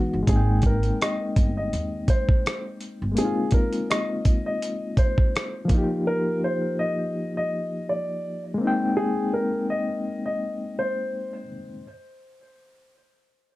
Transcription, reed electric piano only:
0.00 0.27 E3 medium
0.00 0.21 G#3 medium
0.00 0.29 B3 medium
0.00 0.30 D#4 medium
0.00 0.30 F#4 medium
0.23 3.10 G#3 medium
0.23 3.12 A#3 medium
0.29 3.14 C4 medium
0.29 3.15 D#4 medium
0.36 3.17 G5 medium
3.11 5.63 G#3 medium
3.11 5.65 A#3 medium
3.18 5.66 C4 medium
3.18 5.68 D#4 medium
3.24 5.70 F4 medium
5.65 8.53 F3 medium
5.65 8.54 A#3 medium
5.71 8.57 D#4 medium
5.71 8.56 F4 medium
5.78 8.59 G4 medium
8.54 11.42 G#3 medium
8.54 11.44 A#3 medium
8.61 11.45 C4 medium
8.61 11.47 D#4 medium
8.67 11.48 G5 loud

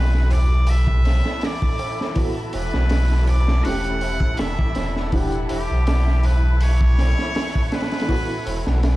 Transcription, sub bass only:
0.00 1.21 B1 loud
2.54 2.71 E1 loud
2.74 3.61 B1 loud
3.65 4.18 E1 loud
4.39 4.56 E1 medium
4.76 5.47 E1 loud
5.50 5.67 E1 loud
5.70 7.14 B1 loud
8.46 8.63 E1 medium
8.66 8.96 B1 loud

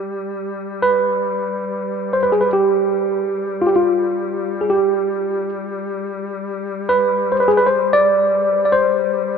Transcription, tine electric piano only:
0.00 0.85 G4 medium
0.82 2.19 B4 loud
2.13 2.23 C5 medium
2.23 2.32 B4 medium
2.32 2.41 G#4 medium
2.41 2.50 B4 medium
2.53 3.65 G4 medium
3.62 3.68 F4 medium
3.67 3.73 G4 medium
3.76 4.74 F4 medium
4.61 4.69 G#4 medium
4.70 5.49 G4 medium
6.89 7.36 B4 medium
7.32 7.42 C5 medium
7.40 7.50 B4 medium
7.48 7.58 G#4 medium
7.57 7.67 B4 medium
7.66 7.95 C5 medium
7.93 8.64 D5 loud
8.65 8.74 D5 medium
8.72 9.38 C5 medium

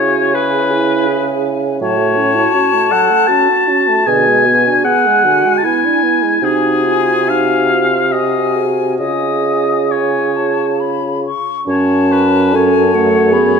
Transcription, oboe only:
0.00 0.36 C#5 medium
0.35 1.45 B4 medium
1.82 2.93 C#5 medium
2.91 3.29 F#5 medium
3.27 4.08 A5 medium
4.07 4.84 G#5 medium
4.84 5.59 F#5 medium
5.58 5.66 A5 medium
5.64 6.46 G#5 medium
6.44 7.31 G#4 medium
7.29 8.14 F5 medium
8.12 8.68 D#5 medium
8.99 9.93 D#5 medium
9.91 10.80 C#5 soft
11.69 12.13 C#5 medium
12.12 12.57 B4 medium
12.56 13.60 C#5 medium

